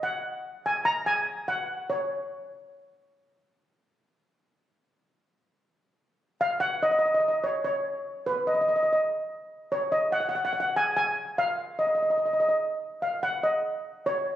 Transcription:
0.03 F#5
0.66 G#5
0.85 A#5
1.06 G#5
1.48 F#5
1.90 C#5
6.41 F5
6.60 F#5
6.83 D#5
6.91 D#5
6.99 D#5
7.06 D#5
7.14 D#5
7.20 D#5
7.28 D#5
7.44 C#5
7.64 C#5
8.26 B4
8.47 D#5
8.54 D#5
8.61 D#5
8.68 D#5
8.76 D#5
8.83 D#5
8.93 D#5
9.72 C#5
9.92 D#5
10.12 F#5
10.20 F#5
10.29 F#5
10.35 F#5
10.45 F#5
10.53 F#5
10.60 F#5
10.76 G#5
10.97 G#5
11.38 F5
11.79 D#5
11.87 D#5
11.95 D#5
12.02 D#5
12.10 D#5
12.18 D#5
12.26 D#5
12.33 D#5
12.40 D#5
12.49 D#5
13.02 F5
13.23 F#5
13.43 D#5
14.06 C#5

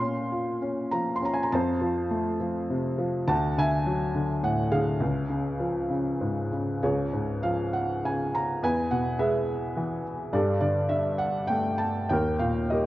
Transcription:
Already playing: A#2 C#5 F5 C6
0.01 C#4
0.32 F4
0.62 C#4
0.92 F3 A#5
1.16 C6
1.22 C#4 A#5
1.34 G#5
1.43 A#5
1.52 F2 C5 A5
1.81 F3
2.11 A3
2.40 F3
2.70 C3
2.98 F3
3.28 D2 F#5 A5
3.58 D3 E5 G#5
3.86 F#3
4.15 D3
4.43 A2 F#5
4.71 D3 G#4 F5
5.00 C#2
5.29 C#3
5.60 F3
5.90 C#3
6.21 G#2
6.52 C#3
6.82 C#2 F4 G#4 C#5
7.13 G#2
7.43 F3 F5
7.73 F#5
8.04 C#3 G#5
8.35 A#5
8.63 E2 B4 G#5
8.91 B2 F#5
9.19 G#3 G#4 B4 E5
9.77 E3
10.33 G2 G4 A4 D5
10.61 D3 D5
10.89 D4 E5
11.18 F#5
11.47 A3 G5
11.78 A5
12.09 D#2 A#4 G5
12.39 A#2 F5
12.70 G3 G4 A#4 D#5

